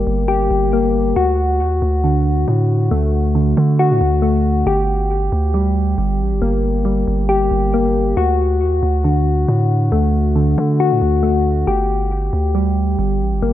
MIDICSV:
0, 0, Header, 1, 3, 480
1, 0, Start_track
1, 0, Key_signature, -2, "minor"
1, 0, Tempo, 437956
1, 1275, Time_signature, 4, 2, 24, 8
1, 14829, End_track
2, 0, Start_track
2, 0, Title_t, "Synth keys"
2, 0, Program_c, 0, 88
2, 0, Note_on_c, 0, 55, 76
2, 0, Note_on_c, 0, 58, 77
2, 0, Note_on_c, 0, 67, 97
2, 296, Note_off_c, 0, 67, 0
2, 309, Note_on_c, 0, 67, 105
2, 788, Note_off_c, 0, 58, 0
2, 802, Note_on_c, 0, 58, 75
2, 1272, Note_off_c, 0, 55, 0
2, 1272, Note_off_c, 0, 67, 0
2, 1275, Note_on_c, 0, 66, 99
2, 1278, Note_off_c, 0, 58, 0
2, 2233, Note_on_c, 0, 50, 73
2, 3192, Note_on_c, 0, 57, 83
2, 3658, Note_off_c, 0, 50, 0
2, 3671, Note_on_c, 0, 50, 81
2, 4144, Note_off_c, 0, 66, 0
2, 4157, Note_on_c, 0, 66, 100
2, 4613, Note_off_c, 0, 57, 0
2, 4626, Note_on_c, 0, 57, 76
2, 5111, Note_off_c, 0, 57, 0
2, 5113, Note_off_c, 0, 50, 0
2, 5116, Note_off_c, 0, 66, 0
2, 5116, Note_on_c, 0, 67, 98
2, 6073, Note_on_c, 0, 55, 77
2, 7033, Note_on_c, 0, 58, 74
2, 7495, Note_off_c, 0, 55, 0
2, 7508, Note_on_c, 0, 55, 77
2, 7976, Note_off_c, 0, 67, 0
2, 7989, Note_on_c, 0, 67, 104
2, 8468, Note_off_c, 0, 58, 0
2, 8481, Note_on_c, 0, 58, 76
2, 8951, Note_off_c, 0, 55, 0
2, 8952, Note_off_c, 0, 67, 0
2, 8955, Note_on_c, 0, 66, 99
2, 8958, Note_off_c, 0, 58, 0
2, 9912, Note_on_c, 0, 50, 73
2, 10872, Note_on_c, 0, 57, 83
2, 11337, Note_off_c, 0, 50, 0
2, 11350, Note_on_c, 0, 50, 81
2, 11824, Note_off_c, 0, 66, 0
2, 11837, Note_on_c, 0, 66, 95
2, 12293, Note_off_c, 0, 57, 0
2, 12306, Note_on_c, 0, 57, 81
2, 12791, Note_off_c, 0, 57, 0
2, 12793, Note_off_c, 0, 50, 0
2, 12795, Note_on_c, 0, 67, 96
2, 12796, Note_off_c, 0, 66, 0
2, 13752, Note_on_c, 0, 55, 74
2, 14713, Note_on_c, 0, 58, 76
2, 14829, Note_off_c, 0, 55, 0
2, 14829, Note_off_c, 0, 58, 0
2, 14829, Note_off_c, 0, 67, 0
2, 14829, End_track
3, 0, Start_track
3, 0, Title_t, "808-style bass"
3, 0, Program_c, 1, 38
3, 76, Note_on_c, 1, 31, 106
3, 536, Note_off_c, 1, 31, 0
3, 556, Note_on_c, 1, 31, 106
3, 1247, Note_off_c, 1, 31, 0
3, 1275, Note_on_c, 1, 38, 112
3, 1756, Note_on_c, 1, 39, 100
3, 1773, Note_off_c, 1, 38, 0
3, 1984, Note_off_c, 1, 39, 0
3, 1996, Note_on_c, 1, 38, 105
3, 2687, Note_off_c, 1, 38, 0
3, 2716, Note_on_c, 1, 45, 104
3, 3176, Note_off_c, 1, 45, 0
3, 3195, Note_on_c, 1, 38, 117
3, 3886, Note_off_c, 1, 38, 0
3, 3915, Note_on_c, 1, 50, 106
3, 4282, Note_on_c, 1, 45, 101
3, 4299, Note_off_c, 1, 50, 0
3, 4389, Note_off_c, 1, 45, 0
3, 4395, Note_on_c, 1, 38, 103
3, 5086, Note_off_c, 1, 38, 0
3, 5115, Note_on_c, 1, 31, 117
3, 5806, Note_off_c, 1, 31, 0
3, 5835, Note_on_c, 1, 38, 106
3, 6526, Note_off_c, 1, 38, 0
3, 6555, Note_on_c, 1, 31, 107
3, 6795, Note_on_c, 1, 33, 100
3, 6812, Note_off_c, 1, 31, 0
3, 6923, Note_on_c, 1, 31, 100
3, 6939, Note_off_c, 1, 33, 0
3, 7030, Note_off_c, 1, 31, 0
3, 7036, Note_on_c, 1, 31, 113
3, 7727, Note_off_c, 1, 31, 0
3, 7755, Note_on_c, 1, 31, 102
3, 8216, Note_off_c, 1, 31, 0
3, 8234, Note_on_c, 1, 31, 107
3, 8926, Note_off_c, 1, 31, 0
3, 8954, Note_on_c, 1, 38, 110
3, 9434, Note_on_c, 1, 39, 101
3, 9451, Note_off_c, 1, 38, 0
3, 9663, Note_off_c, 1, 39, 0
3, 9675, Note_on_c, 1, 38, 105
3, 10366, Note_off_c, 1, 38, 0
3, 10395, Note_on_c, 1, 45, 106
3, 10856, Note_off_c, 1, 45, 0
3, 10875, Note_on_c, 1, 38, 115
3, 11566, Note_off_c, 1, 38, 0
3, 11595, Note_on_c, 1, 50, 106
3, 11962, Note_on_c, 1, 45, 103
3, 11979, Note_off_c, 1, 50, 0
3, 12069, Note_off_c, 1, 45, 0
3, 12074, Note_on_c, 1, 38, 107
3, 12766, Note_off_c, 1, 38, 0
3, 12794, Note_on_c, 1, 31, 112
3, 13486, Note_off_c, 1, 31, 0
3, 13514, Note_on_c, 1, 38, 101
3, 14206, Note_off_c, 1, 38, 0
3, 14234, Note_on_c, 1, 31, 105
3, 14475, Note_on_c, 1, 33, 99
3, 14492, Note_off_c, 1, 31, 0
3, 14603, Note_on_c, 1, 31, 100
3, 14619, Note_off_c, 1, 33, 0
3, 14710, Note_off_c, 1, 31, 0
3, 14716, Note_on_c, 1, 31, 111
3, 14829, Note_off_c, 1, 31, 0
3, 14829, End_track
0, 0, End_of_file